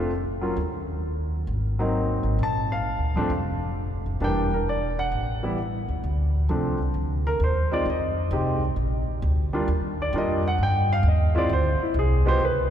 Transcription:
Already playing: F1 F4
0.41 F#3 A#3 C#4 F4
0.57 D#2
1.47 G#1
1.79 F#3 A#3 C4 D#4
2.23 G#1
2.39 A#1
2.43 A5
2.72 F5
2.99 D2
3.14 A1 F3 A3 C4 D4
3.30 F1
4.06 F1
4.20 E1 E3 G3 A#3 D4 G5
4.54 A#4
4.69 D5
4.99 F#5
5.12 A1
5.43 E3 G3 B3 E4
5.88 D#2
6.04 D2
6.49 C2 F3 A3 C4 D4
6.94 D2
7.27 A#4
7.40 D#2
7.44 C5
7.72 G#3 C4 D#4 F4 D5
7.85 F2
7.90 D#5
8.31 C2 G#3 C4 D#4 G4
8.76 A#1
9.22 D2
9.53 G3 A#3 D4 F4
9.68 D#2
10.02 D5
10.13 F2 G3 A#3 D4 F4
10.18 D#5
10.48 F#5
10.58 G2
10.63 G5
10.93 F5
11.03 D#2
11.08 D#5
11.35 G#3 C4 E4 F4 D5
11.49 D2 C5
11.80 E4, muted upright bass stroke
11.94 C2
11.99 G#4
12.26 G#3 B3 F4 G4 C5
12.40 C#2
12.45 B4

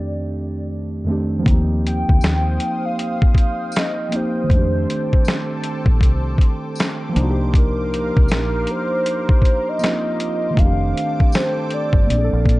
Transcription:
Already playing: F2 D#3 A3 C4 D4 G4 D5
1.04 F2 D#3 A3
1.09 C4 D4 G4
1.39 F3 A#3
1.46 D#2 C4 C5 F5 G5 D#6, kick, closed hi-hat
1.50 D#4 G4
1.87 G5, closed hi-hat
2.09 D2, kick
2.21 D#2, snare, closed hi-hat, tambourine
2.60 closed hi-hat
2.85 F5
2.99 closed hi-hat
3.22 kick
3.35 kick, closed hi-hat
3.72 tambourine
3.76 D#5, snare, closed hi-hat
4.09 F3 A#3, closed hi-hat
4.13 C4 D#4 G4 C5
4.44 D#3 G#3
4.50 F2 A3 C4 A4 C5 D6, kick, closed hi-hat
4.55 D4 G4
4.90 closed hi-hat
5.13 kick
5.25 snare, closed hi-hat, tambourine
5.64 closed hi-hat
5.86 A#1, kick
6.01 C2, kick, closed hi-hat
6.38 kick, closed hi-hat
6.75 tambourine
6.80 snare, closed hi-hat
7.09 F3 A#3
7.15 C2 D4 A#4 F5, closed hi-hat
7.20 D#4 F#4
7.30 G4
7.54 A#4, kick, closed hi-hat
7.94 closed hi-hat
8.17 C2, kick
8.28 A#1, snare, closed hi-hat, tambourine
8.67 C5, closed hi-hat
9.06 closed hi-hat
9.29 kick
9.42 kick, closed hi-hat
9.69 D#5
9.79 F3 A#3 C4, tambourine
9.84 D#4 F4, snare, closed hi-hat
10.20 closed hi-hat
10.50 D#3 A3
10.57 F1 C4 A4 F5 G5 D6, kick, closed hi-hat
10.61 D4 G4
10.97 closed hi-hat
11.20 kick
11.32 C5, snare, closed hi-hat, tambourine
11.70 D5, closed hi-hat
11.93 G1, kick
12.03 F3 A#3
12.08 A#1 A#3 C4 F5 A5, closed hi-hat
12.14 D4 G#4
12.24 A4
12.33 A#1
12.46 A#2, kick, closed hi-hat

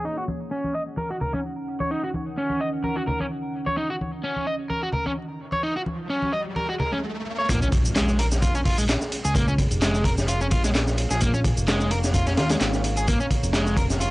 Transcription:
0.05 D#3 C#4 D#4 F#5
0.17 F#4
0.28 high conga
0.51 C#4
0.64 high conga
0.74 D#5
0.97 A#4, high conga
1.10 F#4
1.21 A#4, low conga
1.34 C#4, high conga
1.80 C#5, high conga
1.91 D#4
2.03 F#4
2.14 high conga
2.38 C#4
2.50 high conga
2.61 D#5
2.84 A#4, high conga
2.97 F#4
3.07 A#4, low conga
3.20 C#4, high conga
3.66 C#5, high conga
3.77 D#4, riser
3.90 F#4
4.01 high conga
4.24 C#4
4.36 high conga
4.47 D#5
4.70 A#4, high conga
4.83 F#4
4.93 A#4, low conga
5.06 C#4, high conga
5.52 C#5, high conga
5.63 D#4
5.76 F#4
5.86 high conga
6.10 C#4
6.22 high conga
6.33 D#5
6.56 A#4, high conga
6.69 F#4
6.80 A#4, low conga
6.92 C#4, high conga
7.38 C#5
7.49 A#1 A#3 G#4 C#5, kick, closed hi-hat, impact, shaker
7.62 C#4, shaker
7.72 kick, closed hi-hat, ride
7.85 shaker
7.96 G#3, snare, clap, closed hi-hat, shaker
8.08 snare, shaker
8.19 A#4, closed hi-hat, ride
8.31 snare, shaker
8.42 F4, kick, closed hi-hat, shaker
8.55 C#4, ride, shaker
8.65 F4, kick, open hi-hat, ride
8.78 G#3, shaker
8.89 snare, clap, closed hi-hat, shaker
9.01 snare, shaker
9.12 closed hi-hat, ride
9.25 C#2 G#4, shaker
9.35 A#3, kick, closed hi-hat, shaker
9.48 C#4, shaker
9.58 kick, closed hi-hat, ride
9.71 F1, closed hi-hat, shaker
9.82 G#3, snare, clap, closed hi-hat, shaker
9.95 snare, shaker
10.04 A#4, kick, closed hi-hat, ride
10.18 snare, shaker
10.28 F4, closed hi-hat, shaker
10.41 C#4, shaker
10.51 A#1 F4, kick, closed hi-hat, ride
10.64 G#3, snare, ride, shaker
10.75 snare, clap, closed hi-hat, shaker
10.87 snare, shaker
10.98 closed hi-hat, ride
11.11 A#1 G#4, snare, shaker
11.21 A#3 A#4, kick, closed hi-hat, shaker
11.34 C#4, shaker
11.44 kick, closed hi-hat, ride
11.57 F1, shaker
11.68 G#3, snare, clap, closed hi-hat, shaker
11.80 snare, shaker
11.91 A#4, closed hi-hat, ride
12.04 snare, shaker
12.14 F4, kick, closed hi-hat, shaker
12.27 C#4, snare, ride, shaker
12.37 D#2 F4, snare, closed hi-hat, ride
12.49 G#3, snare, closed hi-hat, shaker
12.60 G#1, snare, clap, closed hi-hat, shaker
12.73 snare, shaker
12.84 closed hi-hat, ride
12.97 G#4, shaker
13.08 A#3, kick, closed hi-hat, shaker
13.20 C#4, shaker
13.31 kick, closed hi-hat, ride
13.43 F1, closed hi-hat, shaker
13.53 G#3, snare, clap, closed hi-hat, shaker
13.66 snare, shaker
13.77 A#4, kick, closed hi-hat, ride
13.90 snare, shaker
14.00 F4, closed hi-hat, shaker

